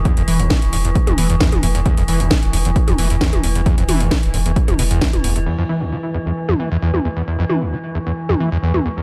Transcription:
<<
  \new Staff \with { instrumentName = "Synth drone" } { \clef bass \time 4/4 \key c \major \tempo 4 = 133 e1~ | e1~ | e1 | e1~ |
e1 | }
  \new Staff \with { instrumentName = "Acid bass" } { \clef bass \time 4/4 \key c \major e,16 f,16 e16 d,16 g16 r16 e,16 e,16 r16 f,16 e16 e,16 e,16 e,16 e,16 e,16 | e,16 f,16 e16 d,16 g16 r16 e,16 e,16 r16 f,16 e16 e,16 e,16 e,16 e,16 e,16 | e,16 f,16 e16 d,16 g16 r16 e,16 e,16 r16 f,16 b,16 e,16 r16 e,16 e,16 e,16 | e,16 f,16 e16 d,16 g16 r16 e,16 e,16 r16 f,16 e16 e,16 e,16 e,16 e,16 e,16 |
e,16 f,16 e16 d,16 g16 r16 e,16 e,16 r16 f,16 e16 e,16 e,16 e,16 e,16 e,16 | }
  \new Staff \with { instrumentName = "Sub bass" } { \clef bass \time 4/4 \key c \major r16 e,,16 e,,16 e,,16 r16 e,,16 e,,16 e,,16 r16 e,,16 e,,16 e,,16 r16 e,,16 e,,16 e,,16 | r16 e,,16 e,,16 e,,16 r16 e,,16 e,,16 e,,16 r16 e,,16 e,,16 e,,16 r16 e,,16 e,,16 e,,16 | r16 e,,16 e,,16 e,,16 r16 e,,16 e,,16 e,,16 r16 e,,16 e,,16 e,,16 r16 e,,16 e,,16 e,,16 | r1 |
r1 | }
  \new DrumStaff \with { instrumentName = "Drums" } \drummode { \time 4/4 <hh bd>16 hh16 hho16 hh16 <hh bd sn>16 hh16 hho16 hh16 <hh bd>16 <hh toml>16 hho16 hh16 <hh bd sn>16 <hh toml>16 hho16 hh16 | <hh bd>16 hh16 hho16 hh16 <hh bd sn>16 hh16 hho16 hh16 <hh bd>16 <hh toml>16 hho16 hh16 <hh bd sn>16 <hh toml>16 hho16 hh16 | <hh bd>16 hh16 <hho toml>16 hh16 <hh bd sn>16 hh16 hho16 hh16 <hh bd>16 <hh toml>16 hho16 hh16 <hh bd sn>16 <hh toml>16 hho16 hh16 | cymc4 r4 r16 toml8. r16 toml8. |
r8 toml8 r4 r16 toml8. r16 toml8. | }
>>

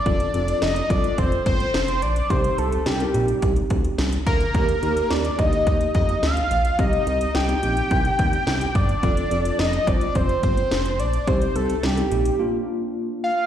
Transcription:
<<
  \new Staff \with { instrumentName = "Analog synth lead" } { \time 4/4 \key c \dorian \tempo 4 = 107 d''4 ees''8 d''8 c''8 c''4 d''8 | c''8 a'8 g'4 r4. bes'8~ | bes'4 d''8 ees''4 ees''8 f''4 | ees''4 g''2~ g''8 d''8~ |
d''4 ees''8 d''8 c''8 c''4 d''8 | c''8 a'8 g'4 r4. f''8 | }
  \new Staff \with { instrumentName = "Tine electric piano" } { \time 4/4 \key c \dorian <c' f' a'>16 r16 <c' f' a'>8. r16 <c' f' a'>4. r4 | <c' ees' g'>4 r16 <c' ees' bes'>16 <c' ees' g'>4. r4 | <bes ees' g'>16 r16 <bes ees' g'>8. r16 <bes ees' g'>4. r4 | <c' ees' g'>4 r16 <c' ees' g'>16 <c' ees' g'>4. r4 |
<c' f' a'>16 r16 <c' f' a'>8. r16 <c' f' c''>4. r4 | <c' ees' g'>4 r16 <c' ees' a'>16 <c' ees' g'>8 <bes d' f'>4. r8 | }
  \new Staff \with { instrumentName = "Analog synth bass" } { \clef bass \time 4/4 \key c \dorian f,,8 f,,8 f,,8 g,,8 f,,8 g,,8 f,,8 bes,,8 | c,8 c,8 c,8 bes,,8 c,8 d,8 c,8 d,8 | ees,8 ees,8 ees,8 d,8 ees,8 f,8 d,8 bes,,8 | c,8 c,8 c,8 bes,,8 c,8 ees,8 c,8 g,,8 |
f,,8 f,,8 f,,8 g,,8 f,,8 g,,8 f,,8 bes,,8 | c,8 c,8 c,8 bes,,8 r2 | }
  \new DrumStaff \with { instrumentName = "Drums" } \drummode { \time 4/4 <hh bd>16 hh16 hh16 hh16 <hh sn>16 hh16 <hh bd>16 hh16 <hh bd>16 hh16 <hh bd>16 hh16 <hh sn>16 hh16 hh16 hh16 | <hh bd>16 hh16 hh16 hh16 <hh sn>16 hh16 hh16 hh16 <hh bd>16 hh16 <hh bd>16 hh16 <hh sn>16 hh16 <hh bd>16 hh16 | <hh bd>16 hh16 hh16 hh16 <hh sn>16 hh16 <hh bd>16 hh16 <hh bd>16 hh16 <hh bd>16 hh16 <hh sn>16 hh16 hh16 hh16 | <hh bd>16 hh16 hh16 hh16 <hh sn>16 hh16 hh16 hh16 <hh bd>16 hh16 <hh bd>16 hh16 <hh sn>16 hh16 <hh bd>16 hh16 |
<hh bd>16 hh16 hh16 hh16 <hh sn>16 hh16 <hh bd>16 hh16 <hh bd>16 hh16 <hh bd>16 hh16 <hh sn>16 hh16 hh16 hh16 | <hh bd>16 hh16 hh16 hh16 <hh sn>16 hh16 hh16 hh16 r4 r4 | }
>>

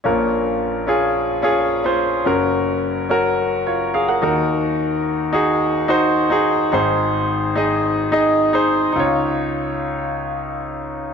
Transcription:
<<
  \new Staff \with { instrumentName = "Grand piano" } { \time 4/4 \key des \major \tempo 4 = 108 << { r1 | r2 r8 <f' des''>8 <aes' f''>16 <bes' ges''>8 r16 | r1 | r1 |
r1 | } \\ { <des' f' bes'>4~ <des' f' bes'>16 r16 <des' f' aes'>8. r16 <des' f' aes'>8. <des' f' c''>8. | <des' ges' bes'>4~ <des' ges' bes'>16 r16 <des' ges' bes'>8. r4 r16 <ees' ges' bes'>8~ | <ees' ges' bes'>4~ <ees' ges' bes'>16 r16 <ees' ges' aes'>8. r16 <ees' ges' c''>8. <ees' ges' aes'>8. | <ees' aes' c''>4~ <ees' aes' c''>16 r16 <ees' aes' ees''>8. r16 <ees' aes' ees''>8. <ees' aes' c''>8. |
<ees' f' des''>1 | } >> }
  \new Staff \with { instrumentName = "Grand piano" } { \clef bass \time 4/4 \key des \major <bes,, bes,>1 | <ges,, ges,>2.~ <ges,, ges,>8 <ees, ees>8~ | <ees, ees>2.~ <ees, ees>8 r8 | <aes,, aes,>1 |
des,1 | }
>>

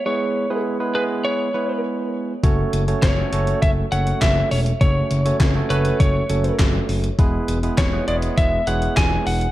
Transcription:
<<
  \new Staff \with { instrumentName = "Lead electric guitar" } { \time 4/4 \key fis \minor \tempo 4 = 101 cis''4 r8 b'8 cis''4 r4 | r4 cis''4 e''8 fis''8 e''8 cis''8 | cis''4 r8 b'8 cis''4 r4 | r4 cis''8 d''8 e''8 fis''8 gis''8 fis''8 | }
  \new Staff \with { instrumentName = "Tine electric piano" } { \time 4/4 \key fis \minor <gis b e' gis' b'>8. <gis b e' gis' b'>8 <gis b e' gis' b'>16 <gis b e' gis' b'>4 <gis b e' gis' b'>4~ <gis b e' gis' b'>16 r16 | <a cis' fis' a' cis''>8. <a cis' fis' a' cis''>8 <a cis' fis' a' cis''>16 <a cis' fis' a' cis''>4 <a cis' fis' a' cis''>4~ <a cis' fis' a' cis''>16 r16 | <a cis' fis' a' cis''>8. <a cis' fis' a' cis''>8 <a cis' fis' a' cis''>16 <a cis' fis' a' cis''>4 <a cis' fis' a' cis''>4~ <a cis' fis' a' cis''>16 r16 | <gis b e' gis' b'>8. <gis b e' gis' b'>8 <gis b e' gis' b'>16 <gis b e' gis' cis''>4 <gis b e' gis' cis''>4~ <gis b e' gis' cis''>16 r16 | }
  \new Staff \with { instrumentName = "Analog synth bass" } { \clef bass \time 4/4 \key fis \minor r1 | fis,,8 fis,,8 fis,,8 fis,,8 fis,,8 fis,,8 fis,,8 e,,8 | fis,,8 fis,,8 fis,,8 fis,,8 fis,,8 fis,,8 fis,,8 fis,,8 | e,,8 e,,8 e,,8 e,,8 e,,8 e,,8 e,,8 e,,8 | }
  \new DrumStaff \with { instrumentName = "Drums" } \drummode { \time 4/4 r4 r4 r4 r4 | <hh bd>8 hh16 hh16 <hc hh bd sn>8 hh16 hh16 <hh bd>8 hh16 hh16 <hc hh bd sn>8 hho16 hh16 | <hh bd>8 hh16 hh16 <hc hh bd sn>8 hh16 hh16 <hh bd>8 hh16 hh16 <hc hh bd sn>8 hho16 hh16 | <hh bd>8 hh16 hh16 <hc hh bd sn>8 hh16 hh16 <hh bd>8 hh16 hh16 <hc hh bd sn>8 hho16 hh16 | }
>>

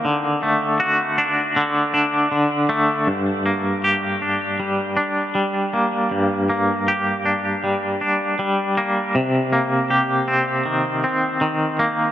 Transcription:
\new Staff \with { instrumentName = "Clean electric guitar" } { \time 4/4 \key g \minor \tempo 4 = 79 d8 a8 fis'8 d'8 d8 d'8 d8 a8 | g,8 bes8 g'8 d'8 g8 d'8 g8 bes8 | g,8 bes8 g'8 d'8 g8 d'8 g8 bes8 | c8 bes8 g'8 c'8 ees8 c'8 ees8 bes8 | }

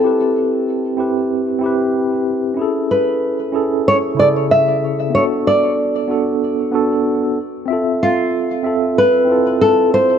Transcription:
<<
  \new Staff \with { instrumentName = "Nylon-string guitar" } { \time 4/4 \key a \major \tempo 4 = 94 a'2.~ a'8 r8 | r8 b'4. cis''8 d''8 e''4 | cis''8 d''2. r8 | r8 f'4. b'4 a'8 c''8 | }
  \new Staff \with { instrumentName = "Tine electric piano" } { \time 4/4 \key a \major <c' e' g' b'>4. <c' e' g' b'>4 <c' e' g' b'>4. | <cis' e' gis' a'>4. <cis' e' gis' a'>4 <cis e' gis' a'>4. | <b d' fis' a'>4. <b d' fis' a'>4 <b d' fis' a'>4 r8 | <c' f' a' e''>4. <c' f' a' e''>4 <c' e' f' a'>4. | }
>>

